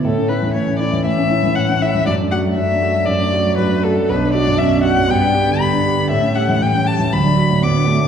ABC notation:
X:1
M:4/4
L:1/16
Q:1/4=118
K:D
V:1 name="Violin"
A2 B2 c2 d2 e4 f2 e2 | d2 f2 e4 d4 B2 A2 | B2 d2 e2 f2 g4 b4 | e2 f2 g2 a2 b4 d'4 |]
V:2 name="Cello"
A,16- | A,16 | D4 C4 B,2 B,6 | A,4 G,4 F,4 B,2 A,2 |]
V:3 name="Grand piano"
A,, C E E, A,, C E E, A,, C E E, A,, C E E, | F,, D F F, F,, D F F, F,, D F F, F,, D F F, | B,,, D F F,, B,,, D F F,, G,, D G D, G,, D G D, | A,, C G E, A,, C G E, D,, D F A,, D,, D F A,, |]